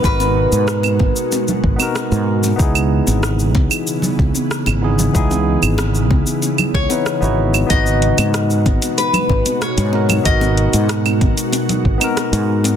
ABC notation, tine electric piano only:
X:1
M:4/4
L:1/16
Q:1/4=94
K:G#m
V:1 name="Tine electric piano"
[B,DFA] z8 z2 [B,DFA]4- [B,DFA] | [B,DEG]12- [B,DEG]2 [B,DEG]2 | [B,DEG] z8 z2 [B,DEB]2 [B,DEF]3 | [B,DFB]12- [B,DFB]2 [B,DFA]2 |
[B,DFA] z8 z2 [B,DFA]4- [B,DFA] |]